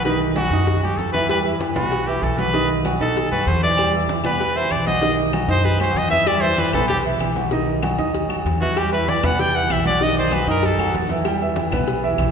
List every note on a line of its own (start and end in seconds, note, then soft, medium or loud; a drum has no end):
0.00 0.46 B1 medium
0.05 0.31 D#3 medium
0.05 0.31 D#4 medium
0.05 0.19 B4 medium
0.05 0.31 D#5 medium
0.05 cowbell loud
0.05 high conga soft
0.20 high conga soft
0.36 0.49 F#3 medium
0.36 0.80 F#4 medium
0.36 0.50 F#4 medium
0.36 0.50 F#5 medium
0.36 cowbell medium
0.36 high conga loud
0.36 low agogo loud
0.50 0.94 F#2 medium
0.50 0.78 D#4 medium
0.50 0.78 D#5 medium
0.50 0.78 D#6 medium
0.50 cowbell medium
0.50 high conga soft
0.67 cowbell loud
0.67 high conga soft
0.67 low agogo medium
0.83 1.09 F#3 medium
0.83 1.09 F#4 medium
0.83 0.99 G4 medium
0.83 1.09 F#5 medium
0.83 high conga soft
0.83 low agogo loud
0.97 1.70 E2 medium
0.97 1.12 A4 medium
0.97 cowbell medium
0.97 high conga medium
0.97 low agogo medium
1.13 1.27 E3 medium
1.13 1.27 E4 medium
1.13 1.28 B4 loud
1.13 1.27 E5 medium
1.13 cowbell medium
1.13 high conga loud
1.29 1.43 G3 medium
1.29 1.43 G4 medium
1.29 1.39 B4 medium
1.29 1.43 G5 medium
1.29 cowbell loud
1.29 high conga soft
1.29 low agogo loud
1.44 1.70 E3 medium
1.44 1.71 E4 medium
1.44 1.71 E5 medium
1.44 high conga soft
1.60 cowbell medium
1.60 high conga loud
1.60 low agogo loud
1.75 2.19 B1 loud
1.75 2.01 B3 medium
1.75 2.08 F#4 medium
1.75 2.02 B4 medium
1.75 2.02 B5 medium
1.75 high conga medium
1.75 low conga medium
1.75 low agogo loud
1.92 cowbell loud
1.92 high conga soft
1.92 low agogo medium
2.07 2.33 E3 medium
2.07 2.33 E4 medium
2.07 2.25 G4 medium
2.07 2.33 E5 medium
2.07 high conga soft
2.22 2.95 B1 medium
2.22 2.40 A4 medium
2.22 cowbell medium
2.22 high conga medium
2.22 low timbale medium
2.22 low agogo loud
2.38 2.51 F#3 medium
2.38 2.51 F#4 medium
2.38 2.69 B4 loud
2.38 2.51 F#5 medium
2.38 cowbell medium
2.38 high conga medium
2.38 low agogo medium
2.53 2.79 D#3 medium
2.53 2.79 D#4 medium
2.53 2.79 D#5 medium
2.53 cowbell loud
2.53 high conga soft
2.69 high conga soft
2.85 2.98 F#3 medium
2.85 2.98 F#4 medium
2.85 2.98 F#5 medium
2.85 cowbell medium
2.85 high conga medium
2.85 low agogo loud
3.00 3.29 B2 medium
3.00 3.26 D#4 medium
3.00 3.30 A4 loud
3.00 3.26 D#5 medium
3.00 3.26 D#6 medium
3.00 cowbell medium
3.00 high conga soft
3.16 cowbell loud
3.16 high conga soft
3.16 low agogo medium
3.32 3.46 F#2 medium
3.32 3.58 F#3 medium
3.32 3.58 F#4 medium
3.32 3.49 B4 medium
3.32 3.58 F#5 medium
3.32 high conga soft
3.32 low agogo loud
3.47 4.19 E2 loud
3.47 3.63 C5 medium
3.47 cowbell medium
3.47 high conga medium
3.47 low agogo medium
3.62 3.75 E3 medium
3.62 3.75 E4 medium
3.62 3.92 D5 loud
3.62 3.76 E5 medium
3.62 cowbell medium
3.62 high conga medium
3.77 3.91 G3 medium
3.77 3.91 G4 medium
3.77 3.91 G5 medium
3.77 cowbell loud
3.77 low agogo loud
3.77 claves medium
3.94 4.19 E3 medium
3.94 4.20 E4 medium
3.94 4.20 E5 medium
3.94 high conga soft
4.09 cowbell medium
4.09 high conga loud
4.09 low agogo medium
4.24 4.68 E2 medium
4.24 4.50 B3 medium
4.24 4.58 B4 medium
4.24 4.51 B4 medium
4.24 4.51 B5 medium
4.24 high conga loud
4.24 low conga medium
4.24 low agogo loud
4.24 claves medium
4.41 cowbell loud
4.41 high conga soft
4.41 low agogo medium
4.55 4.81 E3 medium
4.55 4.81 E4 medium
4.55 4.73 C5 medium
4.55 4.81 E5 medium
4.55 high conga soft
4.70 5.43 B1 loud
4.70 4.86 D5 medium
4.70 cowbell medium
4.70 high conga medium
4.70 low agogo loud
4.70 claves medium
4.87 5.00 F#3 medium
4.87 5.00 F#4 medium
4.87 5.16 D#5 loud
4.87 5.00 F#5 medium
4.87 cowbell medium
4.87 high conga medium
4.87 low agogo medium
5.01 5.27 D#3 medium
5.01 5.28 D#4 medium
5.01 5.28 D#5 medium
5.01 cowbell loud
5.01 high conga soft
5.18 high conga soft
5.33 5.46 F#3 medium
5.33 5.46 F#4 medium
5.33 5.47 F#5 medium
5.33 cowbell medium
5.33 high conga loud
5.33 low agogo loud
5.33 claves medium
5.48 5.92 F#2 medium
5.48 5.74 D#4 medium
5.48 5.66 C5 loud
5.48 5.75 D#5 medium
5.48 5.75 D#6 medium
5.48 cowbell medium
5.48 high conga soft
5.65 5.80 B4 loud
5.65 cowbell loud
5.65 high conga soft
5.65 low agogo loud
5.80 6.06 F#3 medium
5.80 6.06 F#4 medium
5.80 5.99 C5 medium
5.80 6.06 F#5 medium
5.80 high conga soft
5.80 low agogo loud
5.80 claves medium
5.94 6.67 E2 loud
5.94 6.10 D#5 medium
5.94 cowbell medium
5.94 high conga medium
5.94 low agogo medium
6.10 6.24 E3 medium
6.10 6.24 E4 medium
6.10 6.29 E5 loud
6.10 6.24 E5 medium
6.10 cowbell medium
6.10 high conga medium
6.27 6.40 G3 medium
6.27 6.40 G4 medium
6.27 6.43 D5 loud
6.27 6.40 G5 medium
6.27 cowbell loud
6.27 high conga soft
6.27 low agogo loud
6.27 claves medium
6.41 6.68 E3 medium
6.41 6.68 E4 medium
6.41 6.61 C5 loud
6.41 6.68 E5 medium
6.41 high conga soft
6.58 6.73 B4 medium
6.58 cowbell medium
6.58 high conga loud
6.58 low agogo medium
6.73 7.17 B1 loud
6.73 6.99 B3 medium
6.73 6.88 A4 medium
6.73 6.99 B4 medium
6.73 6.99 B5 medium
6.73 high conga medium
6.73 low conga medium
6.73 low agogo loud
6.73 claves medium
6.88 6.98 G4 loud
6.88 cowbell loud
6.88 high conga soft
6.88 low conga medium
6.88 low agogo medium
7.05 7.30 E3 medium
7.05 7.31 E4 medium
7.05 7.31 E5 medium
7.05 high conga soft
7.19 7.92 B1 loud
7.19 cowbell medium
7.19 high conga medium
7.19 low agogo loud
7.19 claves medium
7.36 7.49 F#3 medium
7.36 7.49 F#4 medium
7.36 7.49 F#5 medium
7.36 cowbell medium
7.36 high conga medium
7.36 low agogo medium
7.51 7.77 D#3 medium
7.51 7.77 D#4 medium
7.51 7.78 D#5 medium
7.51 cowbell loud
7.51 high conga soft
7.68 high conga soft
7.82 7.95 F#3 medium
7.82 7.95 F#4 medium
7.82 7.96 F#5 medium
7.82 cowbell medium
7.82 high conga medium
7.82 low agogo loud
7.82 claves medium
7.98 8.27 D#2 loud
7.98 8.24 D#4 medium
7.98 8.24 D#5 medium
7.98 8.24 D#6 medium
7.98 cowbell medium
7.98 high conga soft
8.14 cowbell loud
8.14 high conga soft
8.14 low agogo medium
8.29 8.45 D#2 medium
8.29 8.54 F#3 medium
8.29 8.55 F#4 medium
8.29 8.55 F#5 medium
8.29 high conga soft
8.29 low agogo loud
8.29 claves medium
8.45 9.18 E2 loud
8.45 cowbell medium
8.45 high conga medium
8.45 low timbale medium
8.45 low agogo medium
8.61 8.73 E3 medium
8.61 8.74 E4 medium
8.61 8.79 F#4 medium
8.61 8.74 E5 medium
8.61 cowbell medium
8.61 high conga medium
8.76 8.89 G3 medium
8.76 8.89 G4 medium
8.76 8.92 G4 loud
8.76 8.90 G5 medium
8.76 cowbell loud
8.76 high conga soft
8.76 low agogo loud
8.76 claves medium
8.92 9.18 E3 medium
8.92 9.18 E4 medium
8.92 9.11 B4 medium
8.92 9.18 E5 medium
8.92 high conga soft
9.07 9.26 D5 medium
9.07 cowbell medium
9.07 high conga loud
9.07 low agogo loud
9.23 9.67 E2 loud
9.23 9.49 B3 medium
9.23 9.49 B4 medium
9.23 9.42 F#5 loud
9.23 9.49 B5 medium
9.23 high conga loud
9.23 low conga medium
9.23 low agogo loud
9.23 claves medium
9.39 9.57 G5 loud
9.39 cowbell loud
9.39 high conga soft
9.39 low conga medium
9.39 low agogo medium
9.55 9.80 E3 medium
9.55 9.80 E4 medium
9.55 9.80 E5 medium
9.55 9.74 F#5 loud
9.55 high conga soft
9.69 10.42 B1 loud
9.69 9.86 E5 medium
9.69 cowbell medium
9.69 high conga medium
9.69 low timbale medium
9.69 low agogo loud
9.69 claves medium
9.85 9.98 F#3 medium
9.85 9.98 F#4 medium
9.85 10.04 D5 loud
9.85 9.99 F#5 medium
9.85 cowbell medium
9.85 high conga medium
9.85 low agogo medium
10.01 10.26 D#3 medium
10.01 10.27 D#4 medium
10.01 10.27 D#5 medium
10.01 10.18 D#5 loud
10.01 cowbell loud
10.01 high conga soft
10.16 10.36 C5 medium
10.16 high conga soft
10.31 10.45 F#3 medium
10.31 10.45 F#4 medium
10.31 10.49 B4 medium
10.31 10.45 F#5 medium
10.31 cowbell medium
10.31 high conga loud
10.31 low agogo loud
10.31 claves medium
10.47 10.76 F#2 loud
10.47 10.73 D#4 medium
10.47 10.67 A#4 medium
10.47 10.73 D#5 medium
10.47 10.74 D#6 medium
10.47 cowbell medium
10.47 high conga soft
10.63 10.96 A4 medium
10.63 cowbell loud
10.63 high conga soft
10.63 low agogo medium
10.78 10.93 F#2 medium
10.78 11.04 F#3 medium
10.78 11.04 F#4 medium
10.78 11.05 F#5 medium
10.78 high conga soft
10.78 low agogo loud
10.78 claves medium
10.94 11.67 E2 loud
10.94 cowbell medium
10.94 high conga medium
10.94 low timbale medium
10.94 low agogo medium
11.09 11.23 E3 medium
11.09 11.23 E4 medium
11.09 11.23 E5 medium
11.09 cowbell medium
11.09 high conga medium
11.25 11.38 G3 medium
11.25 11.38 G4 medium
11.25 11.39 G5 medium
11.25 cowbell loud
11.25 low agogo loud
11.25 claves medium
11.41 11.67 E3 medium
11.41 11.67 E4 medium
11.41 11.67 E5 medium
11.41 high conga soft
11.56 cowbell medium
11.56 high conga loud
11.56 low agogo medium
11.71 12.15 B1 medium
11.71 11.98 B3 loud
11.71 11.98 B4 medium
11.71 11.98 B5 medium
11.71 high conga medium
11.71 low conga medium
11.71 low agogo loud
11.71 claves medium
11.87 cowbell loud
11.87 high conga soft
11.87 low agogo medium
12.03 12.29 E3 medium
12.03 12.29 E4 medium
12.03 12.29 E5 loud
12.03 high conga soft
12.18 12.31 B1 loud
12.18 cowbell medium
12.18 high conga medium
12.18 low agogo loud
12.18 claves medium